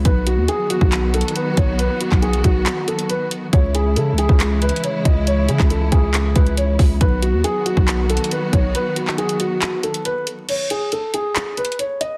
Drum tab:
CC |------------------------------------------------|------------------------------------------------|------------------------------------------------|------------------------------------------------|
HH |x-----x-----x-----x-----x-----x-x-x-x-----x-----|x-----x-----x--x--x-----x-----x--x--x-----x-----|x-----x-----x-----x-----x-----x-x-x-x-----x-----|x-----x-----x-----x-----x-----x--x--x-----o-----|
CP |------------------------x-----------------------|---------x--------------x-----------------------|------------------------x-----------------------|---------x--------------x-----------------------|
BD |o--------------------o--------------------o-----|---------o--------o-----------------------------|o--------------------o--------------------o-----|---------o--------o-----------o-----------o-----|

CC |------------------------------------------------|------------------------------------------------|x-----------------------------------------------|
HH |x-----x-----x-----x-----x-----x-x-x-x-----x-----|x-----x-----x--x--x-----x-----x--x--x-----x-----|x-----x-----x-----x-----x-----x-x-x-x-----x-----|
CP |------------------------x-----------------------|---------x--------------x-----------------------|------------------------x-----------------------|
BD |o--------------------o--------------------o-----|------------------------------------------------|------------------------------------------------|